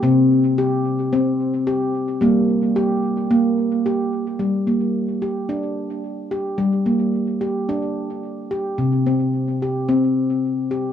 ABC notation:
X:1
M:4/4
L:1/8
Q:"Swing 16ths" 1/4=110
K:Gm
V:1 name="Handpan"
C2 G2 C2 G2 | B,2 G2 B,2 G2 | z B,2 G D2 z G | z B,2 G D2 z G |
z C2 G C2 z G |]
V:2 name="Handpan" clef=bass
C,8 | G,8 | G,8 | G,8 |
C,8 |]